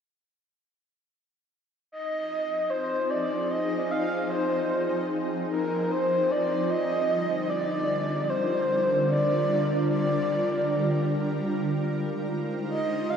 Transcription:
1.91 F3 D#5
2.03 C4
2.26 D#4 G#4
2.70 C5
3.10 D5
3.51 D#5
3.91 F5
4.30 C5
5.50 A#4
5.91 C5
6.31 D5
6.70 G3 D#5
6.96 D3
7.35 A#4
7.42 F4
7.49 D5
8.30 C5
9.12 D5
9.90 D5
11.51 G#3
11.88 D#4
11.98 C5
12.11 G4
12.69 D#5
13.10 F5

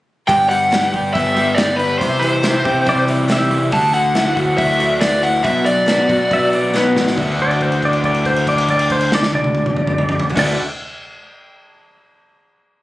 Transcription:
0.27 G1 G2 G3 B3 D4 G4 G5, kick, open hi-hat
0.49 G3 B3 D4 G4 F#5, open hi-hat
0.71 G3 B3 D4 G4, snare, open hi-hat
0.93 G1 B3 D4 G4, kick, open hi-hat
1.13 G1 G3 B3 D4 G4 E5, kick, open hi-hat
1.36 G3 B3 D4 G4, open hi-hat
1.55 G3 B3 D5, snare, open hi-hat
1.59 D4 G4
1.77 D4 B4, open hi-hat
1.98 C2 C3 E3 C4 C5, kick, open hi-hat
2.03 E4 G4
2.20 E3 E4 G4 C5, open hi-hat
2.25 C4
2.43 C3 E3 C4 E4 G4, snare, open hi-hat
2.64 C3 C4 E4 G4, kick, open hi-hat
2.85 C3 E3 G3 C4 E4 G4, kick, open hi-hat
2.89 D5
3.07 E3 C4 E4 G4, open hi-hat
3.28 C3 E3 G3 C4 E4 G4, snare, open hi-hat
3.32 E5
3.51 C2 E4, open hi-hat
3.71 D2 D3 E3 A3 D4 F#4 A5, kick, open hi-hat
3.93 D3 A3 D4 F#4 F#5, open hi-hat
4.15 D3 E3 A3 D4 E4 F#4, snare, open hi-hat
4.36 D2 A3 D4 F#4, kick, open hi-hat
4.57 D2 E3 A3 D4 F#4 E5, kick, open hi-hat
4.79 D3 A3 D4 F#4, open hi-hat
5.01 D3 E3 A3 D4 F#4 D5, snare, open hi-hat
5.23 E4 F#5, open hi-hat
5.43 B1 B2 F#3 B3 D4 F#4 E5, kick, open hi-hat
5.65 F#3 B3 D4 F#4 D5, open hi-hat
5.86 B2 F#3 B3 D4 F#4, snare, open hi-hat
6.07 B2 B3 D4 F#4, kick, open hi-hat
6.28 B2 F#3 B3 D4 F#4, kick, open hi-hat
6.33 E5
6.52 F#3 B3 D4 F#4 D5, open hi-hat
6.73 B2 F#3 B3 D4 F#4 B4, snare
6.95 A1 D4, snare
7.07 D3, snare
7.16 D2 D3 E3 D4 F#4, kick, crash
7.20 A3 A4
7.27 D4
7.32 F#4
7.39 D5, kick, crash
7.51 crash
7.61 C5, kick, crash
7.72 crash
7.82 D5, kick, crash
7.93 crash
8.04 D5, kick, crash
8.14 crash
8.25 C5, kick, crash
8.36 crash
8.47 D5, kick, crash
8.58 crash
8.68 D5, kick, crash
8.79 crash
8.90 C5, kick, crash
9.01 crash
9.12 D5, snare
9.23 snare
9.33 D5, high tom
9.44 high tom
9.55 high tom
9.66 mid tom
9.77 mid tom
9.87 mid tom
9.98 mid tom
10.09 mid tom
10.20 floor tom
10.29 D3, floor tom
10.36 D2 D3 E3 D4 F#4 A4 D5, kick, snare, crash
10.41 A3 D4
10.50 F#4

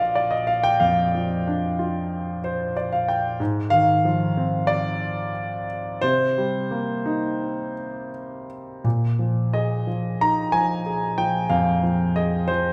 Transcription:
Already playing: A#2 F3 D4 F4 D5 D#5
0.00 F5
0.15 D5
0.31 D#5
0.47 F5
0.64 G5
0.80 F2 F5
1.15 F3
1.47 D4
1.79 F4
2.44 C5
2.77 D5
2.92 F5
3.08 G5
3.40 G#2
3.70 D#3 F5
4.05 F3
4.37 C4
4.67 D5
6.01 C3 C5
6.38 G3
6.71 A#3
7.06 D#4
8.84 A#2
9.19 F3
9.53 G#4 D#5
9.87 F3
10.21 D#4 A#5
10.52 F3 G#5
10.86 G#4
11.18 F3 G5
11.49 F2 F5
11.83 F3
12.16 G#4 D#5
12.48 F3 C5

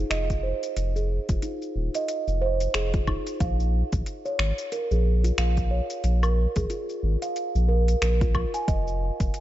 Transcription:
0.10 F1 D#5, finger snap, closed hi-hat, shaker
0.30 kick, closed hi-hat, shaker
0.43 C5
0.63 closed hi-hat, shaker
0.77 F1, closed hi-hat, shaker
0.96 G#4, shaker
1.29 F1 F4, kick, closed hi-hat, shaker
1.42 D#4, closed hi-hat, shaker
1.62 shaker
1.76 D#1
1.94 D#5, closed hi-hat, shaker
2.08 closed hi-hat, shaker
2.28 F1, shaker
2.42 C5
2.60 closed hi-hat, shaker
2.74 F1 G#4, finger snap, closed hi-hat, shaker
2.94 F4, kick, closed hi-hat, shaker
3.07 D#4, kick, low woodblock
3.27 closed hi-hat, shaker
3.40 A#1 F5, kick, closed hi-hat, shaker
3.60 shaker
3.92 A#1, kick, closed hi-hat, shaker
4.06 closed hi-hat, shaker
4.25 C#5, shaker
4.39 G#1, finger snap
4.58 closed hi-hat, shaker
4.72 A#4, closed hi-hat, shaker
4.91 A#1 G#4, shaker
5.24 F4, closed hi-hat, shaker
5.38 A#1 F5, finger snap, closed hi-hat, shaker
5.57 kick, closed hi-hat, shaker
5.71 C#5
5.90 closed hi-hat, shaker
6.04 A#1, closed hi-hat, shaker
6.23 A#4, low woodblock, shaker
6.56 A#1 G#4, kick, closed hi-hat, shaker
6.70 F4, closed hi-hat, shaker
6.89 shaker
7.03 G#1
7.22 F5, closed hi-hat, shaker
7.36 closed hi-hat, shaker
7.55 A#1, shaker
7.69 A#4
7.88 closed hi-hat, shaker
8.02 A#1 A#4, finger snap, closed hi-hat, shaker
8.21 F4, kick, closed hi-hat, shaker
8.35 A#4, kick, low woodblock
8.54 G#5, closed hi-hat, shaker
8.68 F1 D#5, kick, closed hi-hat, shaker
8.88 shaker
9.20 F1, kick, closed hi-hat, shaker
9.34 closed hi-hat, shaker

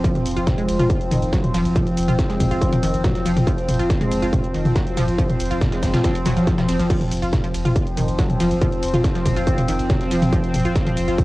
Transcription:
Already playing: F3 C4
0.04 F3, kick, closed hi-hat, shaker
0.15 closed hi-hat, mid tom, shaker
0.26 F1, open hi-hat, ride, shaker
0.31 closed hi-hat
0.36 F1 F4, closed hi-hat, shaker
0.47 kick, snare, closed hi-hat, mid tom, shaker
0.58 G#3, closed hi-hat, shaker
0.69 F1, open hi-hat, ride, shaker
0.79 F1 F4, closed hi-hat, mid tom, shaker
0.90 kick, closed hi-hat, shaker
1.01 closed hi-hat, shaker
1.11 F1 D#3, open hi-hat, mid tom, ride, shaker
1.22 F1, closed hi-hat, shaker
1.33 F#3, kick, snare, closed hi-hat, shaker
1.44 closed hi-hat, mid tom, shaker
1.54 F1 F3, snare, open hi-hat, ride, shaker
1.65 F1, closed hi-hat, shaker
1.76 F3, kick, closed hi-hat, mid tom, shaker
1.87 closed hi-hat, shaker
1.97 F1, open hi-hat, ride, shaker
2.03 closed hi-hat
2.08 F1 F4, closed hi-hat, mid tom, shaker
2.19 kick, snare, closed hi-hat, shaker
2.29 G#3, snare, closed hi-hat, shaker
2.40 F1, kick, open hi-hat, mid tom, ride, shaker
2.51 F1 F4, closed hi-hat, shaker
2.61 kick, closed hi-hat, shaker
2.72 closed hi-hat, mid tom, shaker
2.83 F1 D#3, open hi-hat, ride, shaker
2.94 F1, closed hi-hat, shaker
3.04 F#3, kick, snare, closed hi-hat, mid tom, shaker
3.15 snare, closed hi-hat, shaker
3.26 F1 F3, open hi-hat, ride, shaker
3.37 F1, closed hi-hat, mid tom, shaker
3.47 F3, kick, closed hi-hat, shaker
3.58 closed hi-hat, shaker
3.69 F1, open hi-hat, mid tom, ride, shaker
3.74 closed hi-hat
3.79 F1 F4, closed hi-hat, shaker
3.90 kick, snare, closed hi-hat, shaker
4.01 G#3, closed hi-hat, mid tom, shaker
4.11 F1, open hi-hat, ride, shaker
4.22 F1 F4, closed hi-hat, shaker
4.33 kick, closed hi-hat, mid tom, shaker
4.44 closed hi-hat, shaker
4.54 F1 D#3, open hi-hat, ride, shaker
4.65 F1, closed hi-hat, mid tom, shaker
4.76 F#3, kick, snare, closed hi-hat, shaker
4.87 closed hi-hat, shaker
4.97 F1 F3, snare, open hi-hat, mid tom, ride, shaker
5.08 F1, closed hi-hat, shaker
5.18 F3, kick, closed hi-hat, shaker
5.30 closed hi-hat, mid tom, shaker
5.40 F1, open hi-hat, ride, shaker
5.45 closed hi-hat
5.51 F1 F4, closed hi-hat, shaker
5.61 kick, snare, closed hi-hat, mid tom, shaker
5.72 G#3, snare, closed hi-hat, shaker
5.83 F1, kick, snare, open hi-hat, ride, shaker
5.94 F1 F4, snare, closed hi-hat, mid tom, shaker
6.04 kick, snare, closed hi-hat, shaker
6.15 closed hi-hat, shaker
6.26 F1 F#3, snare, open hi-hat, mid tom, ride, shaker
6.37 F1 F3, closed hi-hat, shaker
6.47 F3, kick, snare, closed hi-hat, shaker
6.58 F3, snare, closed hi-hat, mid tom, shaker
6.68 F1 C4, open hi-hat, ride, shaker
6.79 F1 F3, snare, closed hi-hat, shaker
6.90 F3 C4, kick, closed hi-hat, crash, shaker
7.01 closed hi-hat, mid tom, shaker
7.11 F1, open hi-hat, ride, shaker
7.17 closed hi-hat
7.22 F1 F4, closed hi-hat, shaker
7.33 kick, snare, closed hi-hat, mid tom, shaker
7.44 F3, closed hi-hat, shaker
7.54 F1, open hi-hat, ride, shaker
7.65 F1 F4, closed hi-hat, mid tom, shaker
7.76 kick, closed hi-hat, shaker
7.87 closed hi-hat, shaker
7.97 F1 D#3, open hi-hat, mid tom, ride, shaker
8.08 F1, closed hi-hat, shaker
8.18 F#3, kick, snare, closed hi-hat, shaker
8.29 closed hi-hat, mid tom, shaker
8.40 F1 F3, snare, open hi-hat, ride, shaker
8.51 F1, closed hi-hat, shaker
8.61 F3, kick, closed hi-hat, mid tom, shaker
8.72 closed hi-hat, shaker
8.83 F1, open hi-hat, ride, shaker
8.94 F1 F4, closed hi-hat, mid tom, shaker
9.04 kick, snare, closed hi-hat, shaker
9.15 F3, snare, closed hi-hat, shaker
9.26 F1, kick, open hi-hat, mid tom, ride, shaker
9.37 F1 F4, closed hi-hat, shaker
9.47 kick, closed hi-hat, shaker
9.58 closed hi-hat, mid tom, shaker
9.69 F1 D#3, open hi-hat, ride, shaker
9.79 F1, closed hi-hat, shaker
9.90 F#3, kick, snare, closed hi-hat, mid tom, shaker
10.01 snare, closed hi-hat, shaker
10.11 F1 F3, open hi-hat, ride, shaker
10.22 F1, closed hi-hat, mid tom, shaker
10.33 F3, kick, closed hi-hat, shaker
10.44 closed hi-hat, shaker
10.54 F1, open hi-hat, mid tom, ride, shaker
10.60 closed hi-hat
10.65 F1 F4, closed hi-hat, shaker
10.76 kick, snare, closed hi-hat, shaker
10.87 F3, closed hi-hat, mid tom, shaker
10.97 F1, open hi-hat, ride, shaker
11.08 F1 F4, closed hi-hat, shaker
11.18 kick, closed hi-hat, mid tom, shaker

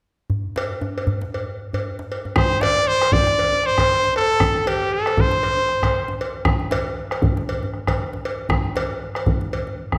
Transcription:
0.30 djembe slap, djembe bass
0.56 cowbell, djembe slap
0.81 djembe tone
0.98 cowbell
1.07 djembe slap, djembe bass
1.21 djembe slap
1.34 cowbell
1.73 cowbell, djembe bass
1.99 djembe slap
2.12 cowbell
2.25 djembe tone
2.36 C5, bombo rim, bombo low, djembe bass
2.50 djembe slap, djembe tone
2.61 D5, bombo rim, cowbell, djembe slap
2.88 C5
3.02 bombo rim, cowbell
3.12 D5, bombo low, djembe bass
3.27 bombo rim, djembe slap
3.39 cowbell
3.53 djembe tone
3.64 C5, bombo rim, djembe slap
3.78 bombo rim, bombo low, cowbell, djembe bass
3.89 djembe slap
4.04 djembe slap
4.16 A4, cowbell
4.30 djembe slap
4.40 bombo rim, bombo low, djembe bass
4.55 djembe slap, djembe tone
4.66 G4, bombo rim, cowbell
4.93 A4
5.06 bombo rim, cowbell
5.17 C5, bombo low, djembe bass
5.31 bombo rim, djembe slap
5.43 cowbell
5.57 djembe tone
5.69 bombo rim
5.83 bombo rim, bombo low, cowbell, djembe bass
5.94 djembe slap
6.08 djembe slap
6.21 cowbell
6.34 djembe slap
6.45 bombo rim, bombo low, djembe bass
6.60 djembe slap, djembe tone
6.71 bombo rim, cowbell, djembe slap
7.11 bombo rim, cowbell
7.22 bombo low, djembe bass
7.37 bombo rim, djembe slap
7.49 cowbell
7.63 djembe tone
7.74 bombo rim, djembe slap
7.87 bombo rim, bombo low, cowbell, djembe bass
7.99 djembe slap
8.13 djembe slap
8.25 cowbell
8.38 djembe slap
8.49 bombo rim, bombo low, djembe bass
8.64 djembe tone
8.75 bombo rim, cowbell, djembe slap
8.90 djembe slap
9.15 bombo rim, cowbell
9.26 bombo low, djembe bass
9.41 djembe slap
9.52 cowbell, djembe slap
9.67 djembe slap, djembe tone
9.78 djembe slap
9.92 bombo rim, bombo low, djembe slap, djembe bass

